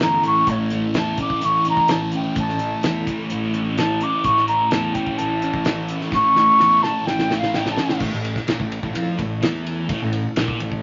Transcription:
0.00 0.22 G1 medium
0.00 0.48 A2 medium
0.00 1.42 E3 medium
0.00 0.71 A3 medium
0.00 7.97 A3 medium
0.00 0.23 C#4 medium
0.00 7.97 C#4 medium
0.00 7.97 E4 medium
0.00 0.94 E4 medium
0.00 7.97 A4 medium
0.00 0.24 A#5 medium
0.00 snare loud
0.00 closed hi-hat medium
0.23 0.45 A1 medium
0.23 1.18 C#4 medium
0.23 0.51 C#6 medium
0.23 closed hi-hat medium
0.47 0.83 A1 medium
0.47 2.37 A2 medium
0.47 0.73 C#5 medium
0.47 kick medium
0.47 closed hi-hat medium
0.70 2.59 A3 medium
0.70 closed hi-hat medium
0.94 1.12 E2 loud
0.94 1.90 E4 medium
0.94 snare loud
0.94 closed hi-hat medium
0.98 1.19 A5 medium
1.17 1.66 C#4 medium
1.17 1.46 D6 medium
1.17 kick medium
1.17 closed hi-hat medium
1.30 kick medium
1.41 2.12 A1 medium
1.41 3.31 E3 medium
1.41 closed hi-hat medium
1.45 1.67 C#6 loud
1.65 2.14 C#4 medium
1.65 closed hi-hat medium
1.69 1.92 A#5 medium
1.77 kick medium
1.88 2.83 E4 medium
1.88 2.14 A5 medium
1.88 snare loud
1.88 closed hi-hat loud
2.12 3.07 C#4 medium
2.12 2.36 G5 medium
2.12 closed hi-hat medium
2.36 2.72 A1 medium
2.36 4.25 A2 medium
2.36 3.05 A5 medium
2.36 kick loud
2.36 closed hi-hat medium
2.49 snare soft
2.59 4.48 A3 medium
2.59 closed hi-hat medium
2.83 3.02 E2 loud
2.83 3.77 E4 medium
2.83 snare loud
2.83 closed hi-hat medium
3.07 3.54 C#4 medium
3.07 kick medium
3.07 closed hi-hat medium
3.30 4.02 A1 medium
3.30 5.18 E3 medium
3.30 closed hi-hat medium
3.54 4.01 C#4 medium
3.54 closed hi-hat medium
3.77 4.71 E4 medium
3.77 4.04 A5 medium
3.77 snare loud
3.77 closed hi-hat medium
4.01 4.94 C#4 medium
4.01 4.26 D6 loud
4.01 closed hi-hat medium
4.24 4.60 A1 loud
4.24 6.12 A2 medium
4.24 4.47 C#6 loud
4.24 kick loud
4.24 closed hi-hat medium
4.37 snare soft
4.48 6.36 A3 medium
4.48 4.72 A#5 medium
4.48 closed hi-hat medium
4.71 4.90 E2 loud
4.71 5.66 E4 medium
4.71 4.95 A5 medium
4.71 snare loud
4.71 closed hi-hat medium
4.94 5.43 C#4 medium
4.94 5.19 G5 medium
4.94 kick medium
4.94 closed hi-hat medium
5.07 kick medium
5.18 5.90 A1 medium
5.18 6.37 E3 medium
5.18 5.89 A5 medium
5.18 closed hi-hat medium
5.42 5.89 C#4 medium
5.42 closed hi-hat medium
5.54 kick medium
5.65 6.58 E4 medium
5.65 snare loud
5.65 closed hi-hat medium
5.89 6.82 C#4 medium
5.89 closed hi-hat medium
6.01 snare soft
6.12 6.48 A1 loud
6.12 7.31 A2 medium
6.12 6.84 C#6 loud
6.12 kick loud
6.12 snare medium
6.36 7.55 A3 medium
6.36 snare medium
6.59 6.78 E2 loud
6.59 7.53 E4 medium
6.59 snare medium
6.83 7.29 C#4 medium
6.83 7.08 A5 loud
6.83 snare medium
7.06 7.78 A1 medium
7.06 8.00 E3 medium
7.06 7.37 G5 medium
7.06 snare medium
7.19 snare medium
7.30 7.77 C#4 medium
7.30 snare medium
7.38 7.56 F5 medium
7.43 snare medium
7.54 8.02 E4 medium
7.54 7.71 G5 medium
7.54 snare medium
7.66 snare medium
7.71 8.00 A5 medium
7.77 8.02 C#4 medium
7.77 snare medium
7.89 snare medium
8.00 8.12 A1 medium
8.00 8.12 A2 medium
8.00 10.82 A3 medium
8.00 10.82 C#4 medium
8.00 10.82 E4 medium
8.00 10.82 A4 medium
8.00 kick loud
8.00 crash loud
8.13 8.35 A1 medium
8.13 8.32 A2 medium
8.13 snare soft
8.25 ride medium
8.36 kick medium
8.36 snare soft
8.47 8.59 A#1 medium
8.47 8.58 A#2 medium
8.47 snare medium
8.47 ride medium
8.59 8.82 A1 medium
8.59 8.79 A2 medium
8.59 kick medium
8.72 ride medium
8.83 8.94 A1 medium
8.83 8.94 A2 medium
8.83 kick medium
8.94 9.17 F2 medium
8.94 9.18 F3 loud
8.94 ride medium
9.18 9.41 A1 medium
9.18 9.38 A2 medium
9.18 kick medium
9.18 ride medium
9.42 9.86 E2 medium
9.42 9.89 E3 loud
9.42 snare loud
9.42 ride medium
9.66 ride medium
9.89 10.01 A1 medium
9.89 10.01 A2 loud
9.89 kick loud
9.89 ride medium
10.02 10.24 A1 medium
10.02 10.21 A2 medium
10.13 ride medium
10.36 10.59 A#1 medium
10.36 10.61 A#2 medium
10.36 snare loud
10.36 ride medium
10.48 kick medium
10.59 10.82 A1 medium
10.59 10.80 A2 medium
10.59 ride medium
10.72 kick medium

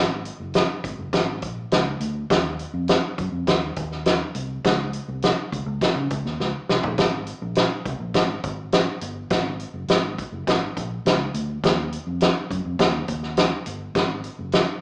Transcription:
0.00 0.29 G#1 loud
0.25 closed hi-hat medium
0.40 0.62 F#1 medium
0.54 snare loud
0.54 closed hi-hat medium
0.84 0.95 G#1 medium
0.84 kick medium
0.84 closed hi-hat medium
0.99 1.10 F#1 medium
1.13 1.42 G#1 loud
1.13 kick loud
1.13 snare loud
1.13 closed hi-hat medium
1.42 1.65 A#1 medium
1.42 kick medium
1.42 closed hi-hat medium
1.72 1.94 C#2 medium
1.72 snare loud
1.72 closed hi-hat medium
2.00 2.23 D2 loud
2.00 closed hi-hat medium
2.30 2.64 D#2 loud
2.30 kick loud
2.30 snare loud
2.30 closed hi-hat medium
2.59 closed hi-hat medium
2.74 2.96 F2 loud
2.88 snare loud
2.88 closed hi-hat medium
3.18 3.29 F#2 loud
3.18 kick loud
3.18 closed hi-hat medium
3.32 3.44 F2 loud
3.47 3.69 D#2 loud
3.47 kick medium
3.47 snare loud
3.47 closed hi-hat loud
3.76 4.21 D#2 loud
3.76 kick loud
3.76 closed hi-hat medium
3.92 snare soft
4.05 snare loud
4.05 closed hi-hat medium
4.35 4.57 C2 medium
4.35 closed hi-hat medium
4.64 4.98 C#2 loud
4.64 kick loud
4.64 snare loud
4.64 closed hi-hat medium
4.93 closed hi-hat medium
5.08 5.31 C2 medium
5.22 snare loud
5.22 closed hi-hat medium
5.52 5.63 C#2 loud
5.52 kick medium
5.52 closed hi-hat medium
5.66 5.78 C#2 loud
5.81 kick loud
5.81 snare loud
5.81 closed hi-hat medium
5.95 6.07 C#3 medium
6.10 6.22 C#2 medium
6.10 kick medium
6.10 closed hi-hat medium
6.25 6.37 D#2 medium
6.25 snare soft
6.40 6.51 C#2 medium
6.40 snare medium
6.69 6.81 C2 medium
6.69 snare loud
6.83 6.95 A#1 medium
6.83 floor tom loud
6.98 7.32 G#1 loud
6.98 kick loud
6.98 snare loud
6.98 closed hi-hat medium
7.27 closed hi-hat medium
7.42 7.64 A#1 loud
7.55 snare loud
7.55 closed hi-hat medium
7.85 7.97 C2 medium
7.85 kick medium
7.85 closed hi-hat medium
8.00 8.11 A#1 medium
8.14 8.37 G#1 loud
8.14 kick loud
8.14 snare loud
8.14 closed hi-hat medium
8.44 8.88 G#1 medium
8.44 kick loud
8.44 closed hi-hat medium
8.72 snare loud
8.72 closed hi-hat medium
9.01 9.24 G1 medium
9.01 closed hi-hat medium
9.30 9.64 G#1 loud
9.30 kick loud
9.30 snare loud
9.30 closed hi-hat loud
9.60 closed hi-hat medium
9.74 9.85 F#1 medium
9.88 10.22 G#1 loud
9.88 snare loud
9.88 closed hi-hat medium
10.18 kick loud
10.18 closed hi-hat medium
10.32 10.44 F#1 medium
10.47 10.69 G#1 loud
10.47 kick loud
10.47 snare loud
10.47 closed hi-hat medium
10.77 10.99 A#1 medium
10.77 kick medium
10.77 closed hi-hat medium
11.05 11.27 C#2 medium
11.05 snare loud
11.05 closed hi-hat medium
11.34 11.56 D2 medium
11.34 closed hi-hat medium
11.64 11.97 D#2 loud
11.64 kick loud
11.64 snare loud
11.64 closed hi-hat medium
11.93 closed hi-hat medium
12.07 12.29 F2 medium
12.21 snare loud
12.21 closed hi-hat medium
12.51 12.62 F#2 loud
12.51 kick medium
12.51 closed hi-hat medium
12.65 12.76 F2 loud
12.79 13.01 D#2 loud
12.79 kick loud
12.79 snare loud
12.79 closed hi-hat medium
13.08 13.52 D#2 medium
13.08 kick medium
13.08 closed hi-hat medium
13.23 snare soft
13.37 snare loud
13.37 closed hi-hat loud
13.66 13.88 G1 medium
13.66 closed hi-hat medium
13.95 14.28 G#1 loud
13.95 kick loud
13.95 snare loud
13.95 closed hi-hat medium
14.24 closed hi-hat medium
14.39 14.61 F#1 medium
14.52 snare loud
14.52 closed hi-hat medium

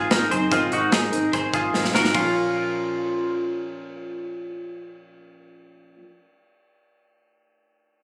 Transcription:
0.00 0.11 D#4 medium
0.00 0.11 F4 medium
0.00 0.11 G#4 medium
0.00 0.12 A#4 medium
0.10 0.28 G#1 medium
0.10 0.31 G#3 medium
0.10 0.31 C4 medium
0.10 0.31 D#4 medium
0.10 0.32 D#4 medium
0.10 0.31 A#4 medium
0.10 0.29 A#4 medium
0.10 snare medium
0.10 closed hi-hat medium
0.31 0.48 F#1 medium
0.31 0.50 C4 soft
0.31 0.51 D#4 medium
0.31 0.52 G#4 soft
0.31 0.51 A#4 medium
0.31 0.52 C5 medium
0.31 closed hi-hat medium
0.50 0.68 G#1 loud
0.50 0.90 G#3 medium
0.50 0.91 C4 medium
0.50 0.72 C4 medium
0.50 0.92 D#4 medium
0.50 0.72 F4 medium
0.50 0.94 A#4 medium
0.50 kick medium
0.50 closed hi-hat medium
0.72 0.89 G#1 medium
0.72 0.93 D#4 medium
0.72 0.92 F#4 medium
0.72 closed hi-hat soft
0.91 1.09 G#1 medium
0.91 1.12 G#3 medium
0.91 1.13 C4 medium
0.91 1.12 D#4 medium
0.91 1.31 D#4 medium
0.91 1.31 G#4 medium
0.91 1.10 A#4 medium
0.91 snare loud
0.91 closed hi-hat medium
1.12 1.30 G#1 medium
1.12 1.72 C4 soft
1.12 1.74 D#4 soft
1.12 1.75 A#4 medium
1.12 closed hi-hat medium
1.33 1.50 G#1 medium
1.33 1.53 G#4 medium
1.33 1.54 C5 medium
1.33 kick medium
1.33 closed hi-hat medium
1.54 1.70 G#1 medium
1.54 1.92 F4 medium
1.54 1.92 G#4 medium
1.54 kick medium
1.54 closed hi-hat medium
1.73 1.91 G#1 medium
1.73 1.94 G#3 medium
1.73 1.94 C4 medium
1.73 1.93 D#4 medium
1.73 1.92 A#4 medium
1.73 snare soft
1.85 snare soft
1.93 2.11 G#1 medium
1.93 2.15 C4 soft
1.93 2.15 D#4 soft
1.93 2.15 F#4 soft
1.93 2.14 A#4 soft
1.93 2.15 A#4 medium
1.93 snare medium
2.05 snare medium
2.10 5.94 A#2 medium
2.10 5.98 F3 medium
2.14 5.95 A#1 medium
2.14 6.02 C#4 medium
2.14 3.33 F4 medium
2.14 kick medium
2.14 ride medium
2.21 6.05 F4 medium
2.21 6.08 A#4 medium

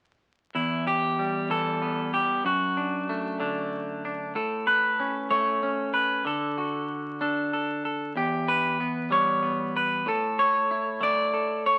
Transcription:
0.55 2.44 E2 medium
0.55 0.87 E4 medium
0.87 1.50 G4 loud
1.19 2.46 G3 soft
1.50 2.42 E3 medium
1.50 2.13 A4 medium
1.82 2.45 B3 soft
2.14 2.45 G4 medium
2.45 4.31 F#2 medium
2.45 3.80 F#4 medium
2.77 3.39 D4 soft
3.09 4.70 A3 soft
3.40 4.35 D3 medium
3.40 4.04 D4 soft
4.05 4.32 D4 soft
4.35 6.26 A2 medium
4.35 5.31 A4 medium
4.67 5.30 B4 loud
5.00 5.62 C#4 soft
5.30 6.22 A3 medium
5.30 5.93 C#5 medium
5.63 6.22 C#4 soft
5.94 6.26 B4 medium
6.25 8.16 D3 medium
6.25 7.20 A4 medium
6.58 8.12 F#4 soft
7.21 8.12 D4 medium
7.21 7.52 A4 soft
7.53 7.84 A4 soft
7.85 8.13 A4 soft
8.16 10.06 E2 medium
8.16 8.80 G4 medium
8.48 9.11 B4 loud
8.80 9.41 B3 soft
9.11 10.02 G3 medium
9.11 9.75 C#5 loud
9.43 10.06 B3 soft
9.76 10.07 B4 medium
10.06 11.79 A2 medium
10.06 11.02 A4 medium
10.39 11.02 C#5 loud
10.71 11.79 E4 soft
11.01 11.79 A3 medium
11.01 11.66 D5 loud
11.34 11.79 A4 soft
11.66 11.79 C#5 loud

